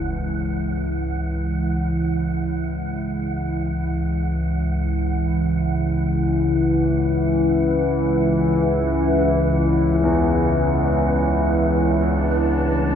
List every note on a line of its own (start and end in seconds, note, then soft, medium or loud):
0.00 12.95 C#2 medium
0.00 12.95 E3 medium
0.00 12.95 G#3 medium
0.00 12.10 E4 medium
0.00 12.10 C#5 medium
0.00 12.12 F#5 medium
10.03 12.95 E2 medium
12.08 12.95 A3 medium
12.08 12.95 D4 medium
12.08 12.95 A5 medium
12.68 12.95 C#5 medium